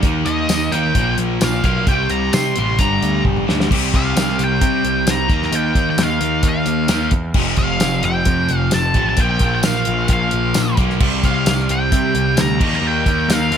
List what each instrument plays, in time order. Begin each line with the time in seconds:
0.03 picked electric bass D#2, distorted electric guitar D#3 A#3 D#4, kick, closed hi-hat
0.26 picked electric bass D#2, lead electric guitar D#5, closed hi-hat
0.49 picked electric bass D#2, snare, closed hi-hat, tambourine
0.72 picked electric bass D#2, distorted electric guitar D#3 A#3 D#4, lead electric guitar G5, closed hi-hat
0.95 picked electric bass A#1, distorted electric guitar A#2 F3 A#3, kick, closed hi-hat
1.18 picked electric bass A#1, closed hi-hat
1.41 picked electric bass A#1, lead electric guitar F5, snare, closed hi-hat, tambourine
1.63 picked electric bass B1, distorted electric guitar A#2 F3 A#3, lead electric guitar F5, kick, closed hi-hat
1.87 picked electric bass C2, distorted electric guitar C3 G3 C4, lead electric guitar G5, kick, closed hi-hat
2.10 picked electric bass C2, lead electric guitar A#5, closed hi-hat
2.33 picked electric bass C3, lead electric guitar C6, snare, closed hi-hat, tambourine
2.56 picked electric bass A1, distorted electric guitar C3 G3 C4, closed hi-hat
2.79 picked electric bass G1, distorted electric guitar G2 D3 G3, lead electric guitar A#5, kick, closed hi-hat
3.02 picked electric bass D2, closed hi-hat
3.25 picked electric bass G1, kick, high tom
3.37 mid tom
3.47 picked electric bass D2, distorted electric guitar G2 D3 G3, snare
3.60 snare
3.70 picked electric bass C2, distorted electric guitar C3 G3 C4, kick, crash
3.94 picked electric bass C2, lead electric guitar F5, kick, closed hi-hat
4.16 picked electric bass C2, snare, closed hi-hat, tambourine
4.29 snare
4.39 picked electric bass C2, closed hi-hat
4.44 lead electric guitar G5
4.61 picked electric bass C3, kick, closed hi-hat
4.84 picked electric bass C2, closed hi-hat
5.06 picked electric bass C2, snare, closed hi-hat, tambourine
5.11 lead electric guitar A#5
5.28 picked electric bass D#2, distorted electric guitar D#3 A#3 D#4, kick, closed hi-hat
5.42 lead electric guitar A#5, snare
5.52 picked electric bass D#2, lead electric guitar G5, closed hi-hat
5.75 picked electric bass D#2, kick, closed hi-hat
5.90 lead electric guitar G5
5.98 picked electric bass D#2, snare, closed hi-hat, tambourine
6.03 lead electric guitar F5
6.21 picked electric bass D#2, closed hi-hat
6.43 picked electric bass D#2, kick, closed hi-hat
6.49 lead electric guitar F5
6.66 picked electric bass D#2, closed hi-hat
6.88 picked electric bass D#2, distorted electric guitar D#3 A#3 D#4, snare, closed hi-hat, tambourine
7.11 picked electric bass E2, kick, closed hi-hat
7.34 picked electric bass F1, distorted electric guitar F2 C3 F3, kick, crash
7.57 picked electric bass F1, lead electric guitar F5, kick, closed hi-hat
7.80 picked electric bass F1, snare, closed hi-hat, tambourine
8.03 picked electric bass F1, lead electric guitar G5, closed hi-hat
8.25 picked electric bass F2, kick, closed hi-hat
8.49 picked electric bass F1, closed hi-hat
8.57 lead electric guitar F5
8.71 picked electric bass F1, lead electric guitar A5, snare, closed hi-hat, tambourine
8.94 picked electric bass A1, distorted electric guitar F2 C3 F3, kick, closed hi-hat
9.09 lead electric guitar A5
9.17 picked electric bass A#1, distorted electric guitar A#2 F3 A#3, kick, closed hi-hat
9.21 lead electric guitar G5
9.39 picked electric bass A#1, kick, closed hi-hat
9.55 lead electric guitar G5
9.63 picked electric bass A#1, lead electric guitar F5, snare, closed hi-hat, tambourine
9.75 snare
9.85 picked electric bass A#1, closed hi-hat
10.08 picked electric bass A#1, kick, closed hi-hat
10.13 lead electric guitar F5
10.31 picked electric bass A#1, closed hi-hat
10.54 picked electric bass A#1, snare, closed hi-hat, tambourine
10.77 picked electric bass B1, distorted electric guitar A#2 F3 A#3, kick, closed hi-hat
10.90 snare
11.00 picked electric bass C2, distorted electric guitar C3 G3 C4, kick, crash
11.23 picked electric bass C2, lead electric guitar F5, kick, closed hi-hat
11.46 picked electric bass C2, snare, closed hi-hat, tambourine
11.59 snare
11.69 picked electric bass C2, lead electric guitar G5, closed hi-hat
11.92 picked electric bass C3, kick, closed hi-hat
12.15 picked electric bass C2, closed hi-hat
12.37 picked electric bass D2, snare, closed hi-hat, tambourine
12.41 lead electric guitar A#5
12.59 picked electric bass D#2, distorted electric guitar D#3 A#3 D#4, kick, crash
12.73 lead electric guitar A#5, snare
12.82 picked electric bass D#2
12.87 lead electric guitar G5
13.06 picked electric bass D#2, kick, closed hi-hat
13.20 lead electric guitar G5
13.28 picked electric bass D#2, snare, closed hi-hat, tambourine
13.33 lead electric guitar F5
13.51 picked electric bass D#2, closed hi-hat